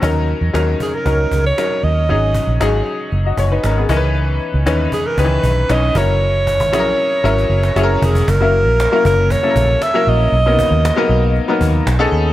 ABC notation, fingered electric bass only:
X:1
M:4/4
L:1/16
Q:1/4=117
K:F#mix
V:1 name="Fingered electric bass" clef=bass
D,,3 E,, D,,2 z2 C,,2 C,,2 z2 D,,2 | G,,,3 A,,, G,,,2 z2 F,,,2 F,,,2 G,,,2 C,,2- | C,,3 C,, D,,2 z2 C,,2 B,,,2 B,,,2 F,,,2- | F,,,3 G,,, A,,,2 z2 G,,,2 F,,,2 F,,,2 ^E,,,2 |
F,,,3 A,,,2 z F,,,3 z A,,,2 z2 A,,,2 | B,,,3 D,,2 z B,,,3 z D,,2 B,,,2 D,,2 |]